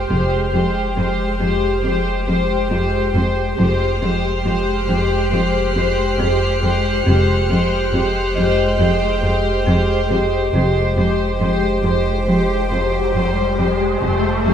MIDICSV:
0, 0, Header, 1, 11, 480
1, 0, Start_track
1, 0, Key_signature, -4, "minor"
1, 0, Tempo, 869565
1, 58, Time_signature, 4, 2, 24, 8
1, 8026, End_track
2, 0, Start_track
2, 0, Title_t, "Violin section"
2, 0, Program_c, 0, 48
2, 0, Note_on_c, 0, 84, 26
2, 0, Note_on_c, 0, 89, 27
2, 0, Note_on_c, 0, 91, 28
2, 1715, Note_off_c, 0, 91, 0
2, 1718, Note_off_c, 0, 89, 0
2, 1719, Note_off_c, 0, 84, 0
2, 1984, Note_on_c, 0, 96, 35
2, 1987, Note_on_c, 0, 89, 35
2, 2459, Note_on_c, 0, 90, 36
2, 3949, Note_off_c, 0, 96, 0
2, 3949, Note_on_c, 0, 97, 35
2, 4599, Note_off_c, 0, 97, 0
2, 4783, Note_off_c, 0, 90, 0
2, 4783, Note_on_c, 0, 91, 36
2, 5556, Note_off_c, 0, 91, 0
2, 5560, Note_off_c, 0, 89, 0
2, 8026, End_track
3, 0, Start_track
3, 0, Title_t, "Vibraphone"
3, 0, Program_c, 1, 11
3, 0, Control_c, 1, 64, 127
3, 0, Note_on_c, 1, 79, 26
3, 515, Note_off_c, 1, 79, 0
3, 4610, Note_on_c, 1, 75, 50
3, 6032, Note_off_c, 1, 75, 0
3, 8026, End_track
4, 0, Start_track
4, 0, Title_t, "Ambient pad"
4, 0, Program_c, 2, 92
4, 58, Note_on_c, 2, 79, 46
4, 60, Note_on_c, 2, 67, 46
4, 60, Note_on_c, 2, 72, 46
4, 1956, Note_off_c, 2, 79, 0
4, 1957, Note_off_c, 2, 67, 0
4, 1957, Note_off_c, 2, 72, 0
4, 1980, Note_on_c, 2, 72, 53
4, 1981, Note_on_c, 2, 79, 55
4, 1982, Note_on_c, 2, 67, 52
4, 3877, Note_off_c, 2, 72, 0
4, 3877, Note_off_c, 2, 79, 0
4, 3878, Note_off_c, 2, 67, 0
4, 3898, Note_on_c, 2, 67, 48
4, 3900, Note_on_c, 2, 72, 51
4, 3901, Note_on_c, 2, 79, 52
4, 5796, Note_off_c, 2, 67, 0
4, 5797, Note_off_c, 2, 72, 0
4, 5798, Note_off_c, 2, 79, 0
4, 5817, Note_on_c, 2, 79, 50
4, 5818, Note_on_c, 2, 67, 52
4, 5819, Note_on_c, 2, 72, 53
4, 7716, Note_off_c, 2, 67, 0
4, 7716, Note_off_c, 2, 79, 0
4, 7717, Note_off_c, 2, 72, 0
4, 7745, Note_on_c, 2, 67, 47
4, 7746, Note_on_c, 2, 72, 48
4, 7746, Note_on_c, 2, 79, 46
4, 8026, Note_off_c, 2, 67, 0
4, 8026, Note_off_c, 2, 72, 0
4, 8026, Note_off_c, 2, 79, 0
4, 8026, End_track
5, 0, Start_track
5, 0, Title_t, "Violin section"
5, 0, Program_c, 3, 48
5, 56, Note_on_c, 3, 72, 36
5, 282, Note_off_c, 3, 72, 0
5, 289, Note_on_c, 3, 72, 32
5, 527, Note_off_c, 3, 72, 0
5, 534, Note_on_c, 3, 72, 37
5, 762, Note_off_c, 3, 72, 0
5, 769, Note_on_c, 3, 72, 41
5, 1009, Note_off_c, 3, 72, 0
5, 1018, Note_on_c, 3, 72, 40
5, 1248, Note_off_c, 3, 72, 0
5, 1255, Note_on_c, 3, 72, 40
5, 1492, Note_off_c, 3, 72, 0
5, 1498, Note_on_c, 3, 72, 40
5, 1726, Note_off_c, 3, 72, 0
5, 1733, Note_on_c, 3, 72, 36
5, 1968, Note_off_c, 3, 72, 0
5, 1975, Note_on_c, 3, 72, 45
5, 2212, Note_off_c, 3, 72, 0
5, 2221, Note_on_c, 3, 72, 38
5, 2455, Note_off_c, 3, 72, 0
5, 2463, Note_on_c, 3, 72, 41
5, 2696, Note_off_c, 3, 72, 0
5, 2703, Note_on_c, 3, 72, 43
5, 2930, Note_off_c, 3, 72, 0
5, 2936, Note_on_c, 3, 72, 45
5, 3168, Note_off_c, 3, 72, 0
5, 3174, Note_on_c, 3, 72, 43
5, 3411, Note_off_c, 3, 72, 0
5, 3421, Note_on_c, 3, 72, 46
5, 3655, Note_off_c, 3, 72, 0
5, 3662, Note_on_c, 3, 72, 40
5, 3895, Note_off_c, 3, 72, 0
5, 3903, Note_on_c, 3, 72, 44
5, 4136, Note_off_c, 3, 72, 0
5, 4145, Note_on_c, 3, 72, 42
5, 4377, Note_off_c, 3, 72, 0
5, 4383, Note_on_c, 3, 72, 44
5, 4610, Note_off_c, 3, 72, 0
5, 4616, Note_on_c, 3, 72, 47
5, 4853, Note_off_c, 3, 72, 0
5, 4862, Note_on_c, 3, 72, 44
5, 5096, Note_off_c, 3, 72, 0
5, 5102, Note_on_c, 3, 72, 42
5, 5333, Note_off_c, 3, 72, 0
5, 5339, Note_on_c, 3, 72, 44
5, 5574, Note_off_c, 3, 72, 0
5, 5582, Note_on_c, 3, 72, 35
5, 5816, Note_off_c, 3, 72, 0
5, 5821, Note_on_c, 3, 72, 41
5, 6055, Note_off_c, 3, 72, 0
5, 6061, Note_on_c, 3, 72, 41
5, 6293, Note_off_c, 3, 72, 0
5, 6300, Note_on_c, 3, 72, 39
5, 6534, Note_off_c, 3, 72, 0
5, 6540, Note_on_c, 3, 72, 38
5, 6771, Note_off_c, 3, 72, 0
5, 6778, Note_on_c, 3, 72, 38
5, 7004, Note_off_c, 3, 72, 0
5, 7010, Note_on_c, 3, 72, 33
5, 7248, Note_off_c, 3, 72, 0
5, 7255, Note_on_c, 3, 72, 36
5, 7490, Note_off_c, 3, 72, 0
5, 7496, Note_on_c, 3, 72, 31
5, 7731, Note_off_c, 3, 72, 0
5, 7737, Note_on_c, 3, 72, 33
5, 7970, Note_off_c, 3, 72, 0
5, 7977, Note_on_c, 3, 72, 27
5, 8026, Note_off_c, 3, 72, 0
5, 8026, End_track
6, 0, Start_track
6, 0, Title_t, "Viola section"
6, 0, Program_c, 4, 48
6, 62, Note_on_c, 4, 56, 41
6, 62, Note_on_c, 4, 67, 41
6, 295, Note_off_c, 4, 56, 0
6, 295, Note_off_c, 4, 67, 0
6, 302, Note_on_c, 4, 67, 33
6, 303, Note_on_c, 4, 56, 35
6, 535, Note_off_c, 4, 67, 0
6, 536, Note_off_c, 4, 56, 0
6, 542, Note_on_c, 4, 67, 36
6, 543, Note_on_c, 4, 56, 37
6, 775, Note_off_c, 4, 67, 0
6, 776, Note_off_c, 4, 56, 0
6, 782, Note_on_c, 4, 67, 33
6, 783, Note_on_c, 4, 56, 37
6, 1014, Note_off_c, 4, 56, 0
6, 1016, Note_off_c, 4, 67, 0
6, 1021, Note_on_c, 4, 56, 40
6, 1022, Note_on_c, 4, 67, 39
6, 1254, Note_off_c, 4, 56, 0
6, 1256, Note_off_c, 4, 67, 0
6, 1260, Note_on_c, 4, 56, 35
6, 1262, Note_on_c, 4, 67, 33
6, 1492, Note_off_c, 4, 56, 0
6, 1493, Note_off_c, 4, 67, 0
6, 1499, Note_on_c, 4, 56, 43
6, 1500, Note_on_c, 4, 67, 41
6, 1729, Note_off_c, 4, 67, 0
6, 1731, Note_off_c, 4, 56, 0
6, 1736, Note_on_c, 4, 67, 36
6, 1737, Note_on_c, 4, 56, 35
6, 1972, Note_off_c, 4, 67, 0
6, 1973, Note_off_c, 4, 56, 0
6, 1980, Note_on_c, 4, 56, 42
6, 1980, Note_on_c, 4, 67, 46
6, 2214, Note_off_c, 4, 67, 0
6, 2215, Note_off_c, 4, 56, 0
6, 2222, Note_on_c, 4, 67, 37
6, 2223, Note_on_c, 4, 56, 39
6, 2453, Note_off_c, 4, 67, 0
6, 2454, Note_off_c, 4, 56, 0
6, 2460, Note_on_c, 4, 56, 40
6, 2460, Note_on_c, 4, 67, 40
6, 2693, Note_off_c, 4, 56, 0
6, 2694, Note_off_c, 4, 67, 0
6, 2700, Note_on_c, 4, 56, 35
6, 2702, Note_on_c, 4, 67, 36
6, 2934, Note_off_c, 4, 56, 0
6, 2935, Note_off_c, 4, 67, 0
6, 2941, Note_on_c, 4, 56, 41
6, 2942, Note_on_c, 4, 67, 42
6, 3171, Note_off_c, 4, 56, 0
6, 3171, Note_off_c, 4, 67, 0
6, 3178, Note_on_c, 4, 56, 43
6, 3178, Note_on_c, 4, 67, 40
6, 3409, Note_off_c, 4, 67, 0
6, 3410, Note_off_c, 4, 56, 0
6, 3416, Note_on_c, 4, 56, 45
6, 3416, Note_on_c, 4, 67, 46
6, 3652, Note_off_c, 4, 67, 0
6, 3653, Note_off_c, 4, 56, 0
6, 3660, Note_on_c, 4, 67, 42
6, 3661, Note_on_c, 4, 56, 42
6, 3892, Note_off_c, 4, 67, 0
6, 3895, Note_off_c, 4, 56, 0
6, 3899, Note_on_c, 4, 67, 46
6, 3901, Note_on_c, 4, 56, 47
6, 4130, Note_off_c, 4, 67, 0
6, 4131, Note_off_c, 4, 56, 0
6, 4137, Note_on_c, 4, 67, 39
6, 4138, Note_on_c, 4, 56, 39
6, 4373, Note_off_c, 4, 56, 0
6, 4373, Note_off_c, 4, 67, 0
6, 4381, Note_on_c, 4, 56, 43
6, 4381, Note_on_c, 4, 67, 39
6, 4611, Note_off_c, 4, 56, 0
6, 4612, Note_off_c, 4, 67, 0
6, 4617, Note_on_c, 4, 56, 41
6, 4619, Note_on_c, 4, 67, 39
6, 4853, Note_off_c, 4, 56, 0
6, 4854, Note_off_c, 4, 67, 0
6, 4860, Note_on_c, 4, 56, 42
6, 4860, Note_on_c, 4, 67, 39
6, 5089, Note_off_c, 4, 67, 0
6, 5090, Note_off_c, 4, 56, 0
6, 5095, Note_on_c, 4, 67, 39
6, 5097, Note_on_c, 4, 56, 39
6, 5327, Note_off_c, 4, 56, 0
6, 5328, Note_off_c, 4, 67, 0
6, 5334, Note_on_c, 4, 56, 42
6, 5335, Note_on_c, 4, 67, 45
6, 5569, Note_off_c, 4, 67, 0
6, 5571, Note_off_c, 4, 56, 0
6, 5576, Note_on_c, 4, 67, 40
6, 5577, Note_on_c, 4, 56, 38
6, 5809, Note_off_c, 4, 67, 0
6, 5810, Note_off_c, 4, 56, 0
6, 5815, Note_on_c, 4, 67, 47
6, 5816, Note_on_c, 4, 56, 47
6, 6052, Note_off_c, 4, 67, 0
6, 6053, Note_off_c, 4, 56, 0
6, 6057, Note_on_c, 4, 67, 38
6, 6059, Note_on_c, 4, 56, 37
6, 6289, Note_off_c, 4, 56, 0
6, 6289, Note_off_c, 4, 67, 0
6, 6295, Note_on_c, 4, 67, 37
6, 6296, Note_on_c, 4, 56, 38
6, 6529, Note_off_c, 4, 67, 0
6, 6530, Note_off_c, 4, 56, 0
6, 6536, Note_on_c, 4, 56, 34
6, 6536, Note_on_c, 4, 67, 31
6, 6770, Note_off_c, 4, 56, 0
6, 6770, Note_off_c, 4, 67, 0
6, 6777, Note_on_c, 4, 56, 33
6, 6777, Note_on_c, 4, 67, 35
6, 7010, Note_off_c, 4, 67, 0
6, 7011, Note_off_c, 4, 56, 0
6, 7017, Note_on_c, 4, 67, 35
6, 7018, Note_on_c, 4, 56, 31
6, 7252, Note_off_c, 4, 56, 0
6, 7253, Note_off_c, 4, 67, 0
6, 7258, Note_on_c, 4, 56, 35
6, 7260, Note_on_c, 4, 67, 36
6, 7492, Note_off_c, 4, 56, 0
6, 7493, Note_off_c, 4, 67, 0
6, 7499, Note_on_c, 4, 56, 30
6, 7499, Note_on_c, 4, 67, 31
6, 7728, Note_off_c, 4, 56, 0
6, 7729, Note_off_c, 4, 67, 0
6, 7735, Note_on_c, 4, 56, 35
6, 7736, Note_on_c, 4, 67, 35
6, 7972, Note_off_c, 4, 56, 0
6, 7972, Note_off_c, 4, 67, 0
6, 7979, Note_on_c, 4, 67, 29
6, 7980, Note_on_c, 4, 56, 28
6, 8026, Note_off_c, 4, 56, 0
6, 8026, Note_off_c, 4, 67, 0
6, 8026, End_track
7, 0, Start_track
7, 0, Title_t, "Cello section"
7, 0, Program_c, 5, 48
7, 55, Note_on_c, 5, 41, 38
7, 99, Note_off_c, 5, 41, 0
7, 297, Note_on_c, 5, 41, 37
7, 341, Note_off_c, 5, 41, 0
7, 535, Note_on_c, 5, 41, 41
7, 579, Note_off_c, 5, 41, 0
7, 774, Note_on_c, 5, 41, 38
7, 818, Note_off_c, 5, 41, 0
7, 1014, Note_on_c, 5, 41, 41
7, 1058, Note_off_c, 5, 41, 0
7, 1257, Note_on_c, 5, 41, 38
7, 1301, Note_off_c, 5, 41, 0
7, 1494, Note_on_c, 5, 41, 42
7, 1538, Note_off_c, 5, 41, 0
7, 1736, Note_on_c, 5, 41, 40
7, 1780, Note_off_c, 5, 41, 0
7, 1976, Note_on_c, 5, 41, 43
7, 2021, Note_off_c, 5, 41, 0
7, 2220, Note_on_c, 5, 41, 40
7, 2264, Note_off_c, 5, 41, 0
7, 2458, Note_on_c, 5, 41, 43
7, 2503, Note_off_c, 5, 41, 0
7, 2697, Note_on_c, 5, 41, 41
7, 2741, Note_off_c, 5, 41, 0
7, 2938, Note_on_c, 5, 41, 45
7, 2982, Note_off_c, 5, 41, 0
7, 3179, Note_on_c, 5, 41, 42
7, 3223, Note_off_c, 5, 41, 0
7, 3418, Note_on_c, 5, 41, 49
7, 3463, Note_off_c, 5, 41, 0
7, 3658, Note_on_c, 5, 41, 43
7, 3702, Note_off_c, 5, 41, 0
7, 3899, Note_on_c, 5, 41, 48
7, 3943, Note_off_c, 5, 41, 0
7, 4138, Note_on_c, 5, 41, 43
7, 4182, Note_off_c, 5, 41, 0
7, 4375, Note_on_c, 5, 41, 46
7, 4419, Note_off_c, 5, 41, 0
7, 4620, Note_on_c, 5, 41, 40
7, 4664, Note_off_c, 5, 41, 0
7, 4858, Note_on_c, 5, 41, 47
7, 4902, Note_off_c, 5, 41, 0
7, 5096, Note_on_c, 5, 41, 41
7, 5140, Note_off_c, 5, 41, 0
7, 5336, Note_on_c, 5, 41, 45
7, 5380, Note_off_c, 5, 41, 0
7, 5574, Note_on_c, 5, 41, 39
7, 5618, Note_off_c, 5, 41, 0
7, 5815, Note_on_c, 5, 41, 48
7, 5859, Note_off_c, 5, 41, 0
7, 6055, Note_on_c, 5, 41, 37
7, 6099, Note_off_c, 5, 41, 0
7, 6295, Note_on_c, 5, 41, 40
7, 6339, Note_off_c, 5, 41, 0
7, 6534, Note_on_c, 5, 41, 37
7, 6578, Note_off_c, 5, 41, 0
7, 6774, Note_on_c, 5, 41, 39
7, 6818, Note_off_c, 5, 41, 0
7, 7017, Note_on_c, 5, 41, 35
7, 7061, Note_off_c, 5, 41, 0
7, 7257, Note_on_c, 5, 41, 38
7, 7301, Note_off_c, 5, 41, 0
7, 7498, Note_on_c, 5, 41, 34
7, 7542, Note_off_c, 5, 41, 0
7, 7738, Note_on_c, 5, 41, 32
7, 7782, Note_off_c, 5, 41, 0
7, 7979, Note_on_c, 5, 41, 31
7, 8023, Note_off_c, 5, 41, 0
7, 8026, End_track
8, 0, Start_track
8, 0, Title_t, "Marimba"
8, 0, Program_c, 6, 12
8, 55, Note_on_c, 6, 41, 44
8, 200, Note_off_c, 6, 41, 0
8, 294, Note_on_c, 6, 53, 34
8, 439, Note_off_c, 6, 53, 0
8, 534, Note_on_c, 6, 53, 35
8, 680, Note_off_c, 6, 53, 0
8, 777, Note_on_c, 6, 41, 45
8, 921, Note_off_c, 6, 41, 0
8, 1018, Note_on_c, 6, 53, 36
8, 1162, Note_off_c, 6, 53, 0
8, 1259, Note_on_c, 6, 41, 36
8, 1403, Note_off_c, 6, 41, 0
8, 1496, Note_on_c, 6, 41, 50
8, 1641, Note_off_c, 6, 41, 0
8, 1740, Note_on_c, 6, 41, 38
8, 1883, Note_off_c, 6, 41, 0
8, 1982, Note_on_c, 6, 41, 54
8, 2125, Note_off_c, 6, 41, 0
8, 2219, Note_on_c, 6, 53, 38
8, 2363, Note_off_c, 6, 53, 0
8, 2460, Note_on_c, 6, 53, 36
8, 2604, Note_off_c, 6, 53, 0
8, 2699, Note_on_c, 6, 41, 48
8, 2843, Note_off_c, 6, 41, 0
8, 2940, Note_on_c, 6, 53, 42
8, 3083, Note_off_c, 6, 53, 0
8, 3180, Note_on_c, 6, 41, 39
8, 3323, Note_off_c, 6, 41, 0
8, 3419, Note_on_c, 6, 41, 57
8, 3563, Note_off_c, 6, 41, 0
8, 3662, Note_on_c, 6, 41, 39
8, 3805, Note_off_c, 6, 41, 0
8, 3902, Note_on_c, 6, 41, 53
8, 4045, Note_off_c, 6, 41, 0
8, 4142, Note_on_c, 6, 53, 37
8, 4285, Note_off_c, 6, 53, 0
8, 4380, Note_on_c, 6, 53, 37
8, 4524, Note_off_c, 6, 53, 0
8, 4621, Note_on_c, 6, 41, 51
8, 4764, Note_off_c, 6, 41, 0
8, 4860, Note_on_c, 6, 53, 40
8, 5004, Note_off_c, 6, 53, 0
8, 5099, Note_on_c, 6, 41, 38
8, 5243, Note_off_c, 6, 41, 0
8, 5337, Note_on_c, 6, 41, 55
8, 5481, Note_off_c, 6, 41, 0
8, 5581, Note_on_c, 6, 41, 39
8, 5724, Note_off_c, 6, 41, 0
8, 5822, Note_on_c, 6, 41, 54
8, 5965, Note_off_c, 6, 41, 0
8, 6060, Note_on_c, 6, 53, 37
8, 6204, Note_off_c, 6, 53, 0
8, 6301, Note_on_c, 6, 53, 35
8, 6444, Note_off_c, 6, 53, 0
8, 6540, Note_on_c, 6, 41, 46
8, 6684, Note_off_c, 6, 41, 0
8, 6781, Note_on_c, 6, 53, 32
8, 6924, Note_off_c, 6, 53, 0
8, 7020, Note_on_c, 6, 41, 32
8, 7164, Note_off_c, 6, 41, 0
8, 7262, Note_on_c, 6, 41, 46
8, 7405, Note_off_c, 6, 41, 0
8, 7501, Note_on_c, 6, 41, 31
8, 7644, Note_off_c, 6, 41, 0
8, 7739, Note_on_c, 6, 41, 43
8, 7883, Note_off_c, 6, 41, 0
8, 7979, Note_on_c, 6, 53, 27
8, 8026, Note_off_c, 6, 53, 0
8, 8026, End_track
9, 0, Start_track
9, 0, Title_t, "Double bass section"
9, 0, Program_c, 7, 48
9, 59, Note_on_c, 7, 29, 41
9, 282, Note_off_c, 7, 29, 0
9, 1976, Note_on_c, 7, 29, 44
9, 2200, Note_off_c, 7, 29, 0
9, 3901, Note_on_c, 7, 29, 48
9, 4123, Note_off_c, 7, 29, 0
9, 5819, Note_on_c, 7, 29, 46
9, 6042, Note_off_c, 7, 29, 0
9, 7738, Note_on_c, 7, 29, 35
9, 7961, Note_off_c, 7, 29, 0
9, 8026, End_track
10, 0, Start_track
10, 0, Title_t, "Sub bass"
10, 0, Program_c, 8, 38
10, 58, Note_on_c, 8, 29, 66
10, 1956, Note_off_c, 8, 29, 0
10, 1983, Note_on_c, 8, 29, 62
10, 3878, Note_off_c, 8, 29, 0
10, 3897, Note_on_c, 8, 29, 63
10, 5796, Note_off_c, 8, 29, 0
10, 5815, Note_on_c, 8, 29, 64
10, 7715, Note_off_c, 8, 29, 0
10, 7743, Note_on_c, 8, 29, 62
10, 8026, Note_off_c, 8, 29, 0
10, 8026, End_track
11, 0, Start_track
11, 0, Title_t, "Riser"
11, 0, Program_c, 10, 103
11, 5819, Note_on_c, 10, 60, 47
11, 8026, Note_off_c, 10, 60, 0
11, 8026, End_track
0, 0, End_of_file